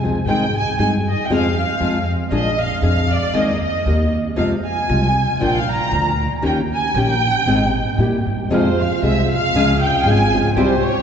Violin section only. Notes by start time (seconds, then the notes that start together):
0.28 G5
0.57 G#5
0.79 G#5
1.09 D#5
1.25 G5
1.31 F5
1.59 F5
2.33 D#5
2.59 F5
2.83 F5
3.12 D5
3.35 D#5
3.64 D#5
4.37 F5
4.66 G#5
5.43 G5
5.55 F5
5.72 A#5
6.45 G5
6.73 G#5
6.98 G5
8.51 C5
8.80 F5
9.03 E5
9.31 F5
9.82 G5
10.05 G#5
10.56 C5
10.85 C#5